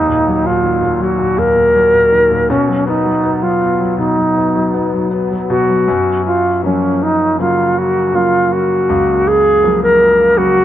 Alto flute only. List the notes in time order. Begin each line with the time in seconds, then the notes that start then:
Already playing: D#4
0.46 F4
1.02 F#4
1.39 A#4
2.50 C#4
2.88 D#4
3.43 F4
3.98 D#4
5.51 F#4
6.26 F4
6.64 C#4
7.03 D#4
7.40 F4
7.78 F#4
8.15 F4
8.52 F#4
9.28 G#4
9.83 A#4
10.37 F#4